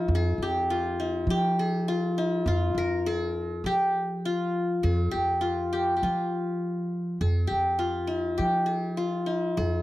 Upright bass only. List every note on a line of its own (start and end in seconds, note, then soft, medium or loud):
0.08 0.36 F2 medium
0.38 1.23 F2 medium
1.27 2.42 F3 medium
2.46 2.74 F2 loud
2.75 3.60 F2 medium
3.64 4.79 F3 loud
4.84 5.12 F2 loud
5.14 5.98 F2 medium
6.02 7.17 F3 medium
7.21 7.49 F2 loud
7.51 8.36 F2 medium
8.39 9.54 F3 medium
9.57 9.82 F2 loud